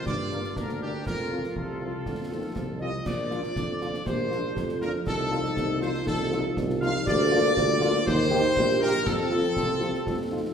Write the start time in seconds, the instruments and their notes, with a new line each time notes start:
Already playing: woodwind section F4
0.06 tuba G2, trombone section D3 A#3, trumpet section D5, concert bass drum, snare
0.31 french horn section A#3 D4, snare
0.44 snare
0.56 tuba D2, trombone section D3 A#3, woodwind section D4, trumpet section A#4, concert bass drum, snare
0.69 snare
0.82 french horn section A#3 D4, trumpet section G4
1.06 tuba F2, trombone section C3 C4, woodwind section F4, trumpet section A#4, concert bass drum, snare
1.31 french horn section F3 C4 F4
1.44 snare
1.56 tuba C2, trombone section C3, trumpet section A4, concert bass drum
1.82 french horn section F3 C4 F4
2.06 tuba F2, trombone section D3, concert bass drum, snare
2.31 trombone section D#3, french horn section F3 C4 F4
2.56 tuba C2, trombone section F3, concert bass drum, snare
2.81 french horn section F3 C4 F4, trombone section G3, flute section D#5, trumpet section D#5, woodwind section D#5
3.06 tuba A#1, trombone section F3 D4, euphonium F4, flute section D5, woodwind section D5, trumpet section D5, concert bass drum, snare, crash
3.31 french horn section F3 D4 F4, snare
3.44 snare
3.56 tuba F2, euphonium D4, concert bass drum, snare
3.81 french horn section F3 D4 F4, snare
3.94 snare
4.06 tuba A#1, euphonium G4, woodwind section C5, flute section C5, trumpet section C5, concert bass drum, snare
4.31 french horn section F3 D4 F4, snare
4.56 tuba F2, euphonium F4, concert bass drum, snare
4.69 snare
4.81 french horn section F3 D4 F4, trumpet section A#4, woodwind section A#4, flute section A#4, snare
5.06 tuba C2, trombone section F3 D#4, woodwind section A4, flute section A4, trumpet section A4, concert bass drum, snare, crash
5.31 french horn section F3 D#4 F4, snare
5.44 snare
5.56 tuba C2, euphonium D#4, concert bass drum, snare
5.81 french horn section F3 D#4 F4, flute section C5, trumpet section C5, woodwind section C5, snare
5.94 snare
6.06 tuba C2, euphonium F4, flute section A4, woodwind section A4, trumpet section A4, concert bass drum, snare
6.31 french horn section F3 D#4 F4, snare
6.57 tuba C2, concert bass drum, snare
6.70 snare
6.81 french horn section F3 D#4 F4, woodwind section F5, flute section F5, trumpet section F5, snare
7.05 tuba D2, trombone section F3 A#3, euphonium G4, flute section D5, woodwind section D5, trumpet section D5, concert bass drum, snare, crash
7.31 french horn section A#3 D4 F4, snare
7.45 snare
7.56 tuba D2, euphonium F4, concert bass drum, snare
7.81 french horn section A#3 D4 F4, snare
7.95 snare
8.05 tuba D#2, trombone section G3, euphonium D#4, woodwind section C5, flute section C5, trumpet section C5, concert bass drum, snare
8.30 french horn section A#3 D#4 G4, snare
8.55 tuba A#1, euphonium G4, concert bass drum, snare
8.70 snare
8.80 french horn section A#3 D#4 G4, woodwind section A#4, flute section A#4, trumpet section A#4, snare
9.05 tuba F2, trombone section F3 C4, euphonium F4, flute section A4, woodwind section A4, trumpet section A4, concert bass drum, snare, crash
9.32 french horn section F3 C4 F4, snare
9.44 snare
9.56 tuba C2, euphonium F4, concert bass drum, snare
9.81 french horn section F3 C4 F4, euphonium G4, snare
9.94 snare
10.06 tuba F2, euphonium F4, concert bass drum, snare
10.31 french horn section F3 C4 F4, euphonium D#4